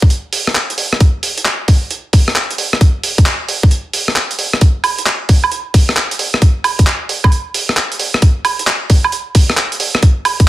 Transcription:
0.02 kick loud
0.10 closed hi-hat medium
0.33 open hi-hat loud
0.47 cross-stick medium
0.55 clap loud
0.55 closed hi-hat medium
0.70 closed hi-hat medium
0.78 open hi-hat medium
0.93 cross-stick medium
1.00 kick loud
1.00 closed hi-hat medium
1.23 open hi-hat loud
1.38 closed hi-hat medium
1.45 clap loud
1.68 kick loud
1.68 open hi-hat medium
1.91 closed hi-hat medium
2.13 kick loud
2.13 open hi-hat loud
2.28 cross-stick medium
2.36 clap loud
2.36 closed hi-hat medium
2.51 closed hi-hat medium
2.58 open hi-hat medium
2.73 cross-stick medium
2.73 closed hi-hat soft
2.81 kick loud
2.81 closed hi-hat medium
3.03 open hi-hat loud
3.18 kick loud
3.18 closed hi-hat medium
3.26 clap loud
3.26 closed hi-hat medium
3.49 open hi-hat medium
3.63 kick loud
3.71 closed hi-hat medium
3.93 open hi-hat loud
4.08 cross-stick medium
4.16 clap loud
4.16 closed hi-hat medium
4.31 closed hi-hat medium
4.39 open hi-hat medium
4.53 cross-stick medium
4.53 closed hi-hat soft
4.61 kick loud
4.61 closed hi-hat medium
4.84 open hi-hat loud
4.84 high woodblock medium
4.98 closed hi-hat medium
5.06 clap loud
5.29 kick loud
5.29 open hi-hat medium
5.44 high woodblock medium
5.52 closed hi-hat medium
5.74 kick loud
5.74 open hi-hat loud
5.89 cross-stick medium
5.97 clap loud
5.97 closed hi-hat medium
6.11 closed hi-hat medium
6.19 open hi-hat medium
6.34 cross-stick medium
6.42 kick loud
6.42 closed hi-hat medium
6.64 open hi-hat loud
6.64 high woodblock medium
6.79 kick loud
6.79 closed hi-hat medium
6.87 clap loud
6.87 closed hi-hat medium
7.09 open hi-hat medium
7.24 kick loud
7.24 high woodblock medium
7.32 closed hi-hat medium
7.54 open hi-hat loud
7.69 cross-stick medium
7.77 clap loud
7.77 closed hi-hat medium
7.92 closed hi-hat medium
8.00 open hi-hat medium
8.14 cross-stick medium
8.14 closed hi-hat soft
8.22 kick loud
8.22 closed hi-hat medium
8.45 open hi-hat loud
8.45 high woodblock medium
8.59 closed hi-hat medium
8.67 clap loud
8.67 closed hi-hat medium
8.90 kick loud
8.90 open hi-hat medium
9.04 high woodblock medium
9.12 closed hi-hat medium
9.35 kick loud
9.35 open hi-hat loud
9.50 cross-stick medium
9.57 clap loud
9.57 closed hi-hat medium
9.72 closed hi-hat medium
9.80 open hi-hat loud
9.95 cross-stick medium
9.95 closed hi-hat soft
10.02 kick loud
10.02 closed hi-hat medium
10.25 open hi-hat loud
10.25 high woodblock medium
10.40 kick loud
10.40 closed hi-hat medium

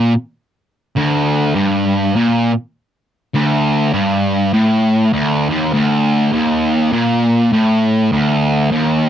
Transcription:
0.00 0.12 A#2 loud
0.97 1.55 D2 loud
1.55 2.14 G2 loud
2.16 2.51 A#2 loud
3.34 3.93 D2 loud
3.93 4.53 G2 loud
4.54 5.13 A2 loud
5.13 5.49 D2 loud
5.49 5.72 D#2 loud
5.73 6.32 D2 loud
6.32 6.92 D#2 loud
6.93 7.52 A#2 loud
7.52 8.12 A2 loud
8.12 8.71 D2 loud
8.72 9.09 D#2 loud

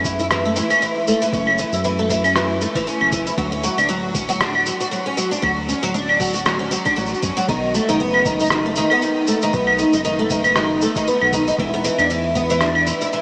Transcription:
0.00 0.62 F#2 medium
0.05 0.18 E3 medium
0.05 kick loud
0.05 shaker medium
0.19 0.26 E4 medium
0.19 shaker soft
0.31 0.44 E3 medium
0.31 cross-stick medium
0.31 shaker soft
0.45 0.56 A3 medium
0.56 0.69 E3 medium
0.56 shaker medium
0.70 0.80 C#4 medium
0.70 claves medium
0.70 shaker soft
0.73 claves medium
0.78 claves soft
0.82 1.06 E3 medium
0.82 shaker soft
1.07 1.20 A3 medium
1.07 shaker medium
1.22 1.32 E3 medium
1.22 shaker soft
1.33 1.64 F#1 medium
1.33 1.58 C#4 medium
1.33 kick loud
1.33 shaker soft
1.47 claves medium
1.58 1.72 E3 medium
1.58 shaker medium
1.72 2.67 F#2 medium
1.72 1.80 E4 medium
1.72 shaker soft
1.84 1.97 E3 medium
1.84 shaker soft
1.99 2.09 A3 medium
2.10 2.23 E3 medium
2.10 kick medium
2.10 shaker medium
2.24 2.34 C#4 medium
2.24 claves medium
2.24 shaker soft
2.36 2.60 E3 medium
2.36 cross-stick medium
2.36 shaker soft
2.61 2.74 A3 medium
2.61 shaker medium
2.75 2.86 E3 medium
2.75 kick loud
2.75 shaker soft
2.87 3.11 C#4 medium
2.87 shaker soft
3.01 3.31 F#1 medium
3.01 claves medium
3.12 3.25 E3 medium
3.12 kick loud
3.12 shaker medium
3.27 3.33 E4 medium
3.27 shaker soft
3.38 3.69 D2 loud
3.38 3.51 F#3 medium
3.38 kick loud
3.38 shaker soft
3.52 3.63 C#4 medium
3.64 3.77 F#3 loud
3.64 shaker medium
3.77 4.72 D1 medium
3.77 3.88 D4 medium
3.77 claves medium
3.77 shaker soft
3.89 4.13 F#3 medium
3.89 shaker soft
4.15 4.28 C#4 medium
4.15 kick loud
4.15 shaker medium
4.29 4.39 F#3 medium
4.29 shaker soft
4.40 4.65 D4 medium
4.40 cross-stick medium
4.40 shaker soft
4.55 claves medium
4.66 4.79 F#3 medium
4.66 shaker medium
4.80 4.87 F#4 medium
4.80 shaker soft
4.91 5.04 F#3 medium
4.91 shaker soft
5.06 5.17 C#4 medium
5.17 5.30 F#3 medium
5.17 shaker medium
5.31 5.42 D4 medium
5.31 shaker soft
5.42 5.75 D2 loud
5.42 5.67 F#3 medium
5.42 kick loud
5.42 claves medium
5.42 shaker soft
5.69 5.82 C#4 medium
5.69 shaker medium
5.82 6.77 D1 medium
5.82 5.93 F#3 loud
5.82 shaker soft
5.94 6.19 D4 medium
5.94 shaker soft
6.09 claves medium
6.20 6.33 F#3 medium
6.20 kick medium
6.20 shaker medium
6.24 shaker medium
6.26 shaker soft
6.29 shaker soft
6.32 6.41 F#4 medium
6.32 shaker soft
6.35 shaker soft
6.46 6.59 F#3 medium
6.46 cross-stick medium
6.46 shaker soft
6.59 6.70 C#4 medium
6.71 6.84 F#3 medium
6.71 shaker medium
6.85 6.96 D4 medium
6.85 kick loud
6.85 claves medium
6.85 shaker soft
6.96 7.14 A1 medium
6.96 7.21 F#3 medium
6.96 shaker soft
7.06 shaker soft
7.14 shaker soft
7.22 7.32 F#2 medium
7.22 7.35 C#4 medium
7.22 kick medium
7.22 shaker medium
7.37 7.47 F#3 medium
7.37 shaker soft
7.48 7.80 B1 medium
7.48 7.73 D#3 medium
7.48 kick loud
7.48 shaker soft
7.74 7.87 A3 medium
7.74 shaker medium
7.89 8.83 F#1 medium
7.89 7.99 D#3 loud
7.89 shaker soft
8.00 8.24 B3 medium
8.14 claves medium
8.25 8.38 D#3 medium
8.25 kick loud
8.25 shaker medium
8.39 8.46 D#4 medium
8.39 shaker soft
8.42 shaker soft
8.44 shaker soft
8.46 shaker soft
8.48 cross-stick medium
8.48 shaker soft
8.50 8.64 D#3 medium
8.50 shaker soft
8.66 8.76 A3 medium
8.76 8.90 D#3 medium
8.76 shaker medium
8.90 9.01 B3 medium
8.90 claves medium
9.02 9.27 D#3 medium
9.02 shaker soft
9.27 9.41 A3 medium
9.27 shaker medium
9.42 9.53 D#3 medium
9.42 shaker soft
9.53 9.85 B1 loud
9.53 9.78 B3 medium
9.53 kick loud
9.53 shaker soft
9.67 claves medium
9.78 9.92 D#3 medium
9.78 shaker medium
9.93 10.87 F#1 medium
9.93 10.00 D#4 medium
9.93 shaker soft
10.04 10.18 D#3 medium
10.04 shaker soft
10.19 10.30 A3 medium
10.30 10.43 D#3 medium
10.30 kick medium
10.30 shaker medium
10.44 10.55 B3 medium
10.44 claves medium
10.44 shaker soft
10.56 10.81 D#3 medium
10.56 cross-stick medium
10.56 shaker soft
10.81 10.95 A3 medium
10.81 shaker medium
10.96 11.06 D#3 medium
10.96 kick medium
10.96 shaker soft
11.07 11.32 B3 medium
11.07 shaker soft
11.21 11.52 B1 medium
11.21 claves medium
11.33 11.46 D#3 medium
11.33 kick medium
11.33 shaker medium
11.47 11.54 D#4 medium
11.47 shaker soft
11.58 11.90 E1 loud
11.58 11.72 E3 medium
11.58 kick loud
11.58 shaker soft
11.74 11.84 B3 medium
11.84 11.97 E3 loud
11.84 shaker medium
11.98 12.92 E2 medium
11.98 12.09 D4 medium
11.98 claves medium
11.98 shaker soft
12.10 12.35 E3 medium
12.10 shaker soft
12.35 12.48 B3 medium
12.35 kick loud
12.35 shaker medium
12.50 12.60 E3 medium
12.50 shaker soft
12.61 12.86 D4 medium
12.61 cross-stick medium
12.61 shaker soft
12.75 claves medium
12.87 13.00 E3 medium
12.87 shaker medium
13.01 13.08 E4 medium
13.01 shaker soft
13.13 13.22 E3 medium
13.13 shaker soft

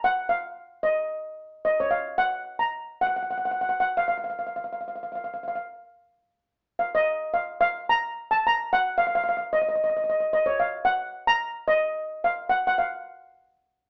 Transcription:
0.04 0.32 F#5 medium
0.29 0.86 F5 medium
0.83 1.64 D#5 medium
1.65 1.79 D#5 medium
1.80 1.93 C#5 medium
1.91 2.20 F5 medium
2.18 2.62 F#5 medium
2.59 3.01 A#5 medium
3.01 3.06 F#5 medium
3.07 3.15 F#5 medium
3.16 3.21 F#5 medium
3.23 3.29 F#5 soft
3.31 3.36 F#5 medium
3.38 3.44 F#5 medium
3.45 3.50 F#5 medium
3.51 3.60 F#5 medium
3.61 3.68 F#5 medium
3.69 3.77 F#5 medium
3.80 3.96 F#5 medium
3.97 4.07 F5 medium
4.08 4.16 F5 medium
4.18 4.23 F5 soft
4.24 4.28 F5 medium
4.30 4.38 F5 soft
4.39 4.45 F5 medium
4.47 4.54 F5 soft
4.56 4.62 F5 medium
4.64 4.70 F5 soft
4.73 4.79 F5 soft
4.81 4.86 F5 soft
4.88 4.93 F5 soft
4.96 5.01 F5 soft
5.03 5.09 F5 soft
5.12 5.14 F5 soft
5.12 5.22 F5 soft
5.24 5.31 F5 soft
5.34 5.39 F5 soft
5.43 5.47 F5 soft
5.48 5.54 F5 medium
5.55 5.61 F5 medium
6.79 6.86 F5 medium
6.95 7.31 D#5 medium
7.34 7.59 F5 medium
7.61 7.86 F5 loud
7.89 8.28 A#5 loud
8.31 8.43 A5 medium
8.47 8.72 A#5 medium
8.73 8.99 F#5 loud
8.98 9.05 F5 medium
9.07 9.13 F5 medium
9.15 9.21 F5 medium
9.24 9.28 F5 medium
9.29 9.36 F5 medium
9.37 9.43 F5 medium
9.53 9.60 D#5 medium
9.62 9.68 D#5 medium
9.69 9.74 D#5 medium
9.76 9.82 D#5 medium
9.84 9.88 D#5 medium
9.90 9.95 D#5 medium
9.97 10.03 D#5 medium
10.04 10.08 D#5 medium
10.10 10.19 D#5 medium
10.20 10.27 D#5 medium
10.33 10.48 D#5 medium
10.46 10.59 C#5 medium
10.60 10.72 F5 medium
10.85 11.29 F#5 loud
11.27 11.69 A#5 medium
11.68 12.24 D#5 medium
12.24 12.51 F5 medium
12.49 12.63 F#5 medium
12.67 12.77 F#5 medium
12.78 13.90 F5 medium

